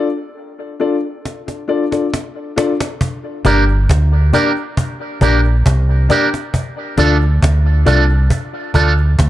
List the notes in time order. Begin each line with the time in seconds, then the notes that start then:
0.80 D4 F4 A4 D5
1.25 cajon slap
1.48 cajon slap
1.68 D4 F4 A4 D5
1.91 D4 F4 A4 D5, cajon slap
2.14 cajon slap
2.56 D4 F4 A4 D5, cajon slap
2.80 A4 D5, cajon slap
3.01 cajon bass
3.45 G1 A#3 D4 G4 A#4 D5, cajon bass
3.68 cajon slap
3.89 D2, cajon bass, cajon slap
4.33 A#3 D4 G4 A#4 D5, cajon bass
4.56 cajon slap
4.77 cajon bass
5.21 A#1 A#3 D4 G4 A#4 D5, cajon bass
5.44 A#4 D5, cajon slap
5.66 C2, cajon bass, cajon slap
6.09 A#3 D4 G4 A#4 D5, cajon bass
6.34 cajon slap
6.54 cajon bass
6.97 D2 A3 D4 F4 A4 D5, cajon bass
7.21 cajon slap
7.43 D2, cajon bass, cajon slap
7.85 C2 A3 D4 F4 A4 D5, cajon bass
8.09 cajon slap
8.30 cajon bass
8.74 D2 A3 D4 F4 A4 D5, cajon bass
8.97 cajon slap
9.19 D2, cajon bass, cajon slap